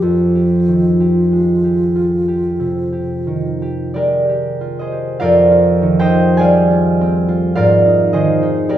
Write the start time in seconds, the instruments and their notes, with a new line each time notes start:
Already playing: harp F3 F4 G4
0.02 harp F2, alto flute F4
0.35 harp G4
0.68 harp D#3
1.00 harp G4
1.32 harp G#3
1.64 harp G4
1.95 harp F4
2.28 harp G4
2.60 harp C3
2.93 harp G4
3.27 harp D#3
3.62 harp G4
3.94 harp G#3 G4 A#4 D5
4.29 harp G4
4.61 harp F4
4.79 harp G#4 C5 D#5
4.92 harp G4
5.20 harp F2 F4 A#4 D5 F5
5.51 harp F4
5.82 harp D#3
5.99 harp G4 C5 D#5 G5
6.10 harp F4
6.37 harp G3 G#4 D5 G#5
6.41 harp F5
6.70 harp F4
7.01 harp C4
7.28 harp F4
7.55 harp G#2 F4 A#4 D5 F5
7.85 harp D#4
8.13 harp D#3 G#4 C5 D#5
8.43 harp D#4
8.69 harp A#3 G4 A#4 D5